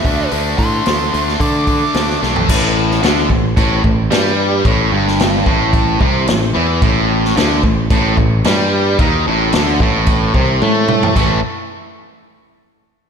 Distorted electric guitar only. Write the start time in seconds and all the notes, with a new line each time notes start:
0.05 D3 A3 D4
0.32 D3 A3 D4
0.86 D3 A3 D4
1.13 D3 A3 D4
1.41 D3 A3 D4
1.95 D3 A3 D4
2.22 D3 A3 D4
2.50 A2
3.02 D3
3.31 A2
3.57 A2
3.84 A2
4.11 G3
4.65 A2
4.92 G2
5.47 A2
6.01 C3
6.29 A2
6.54 E3
6.83 A2
7.37 D3
7.64 A2
7.92 A2
8.19 A2
8.45 G3
9.01 D#3
9.27 A2
9.55 D3
9.81 A2
10.35 C3
10.63 A3
11.16 A2 E3 A3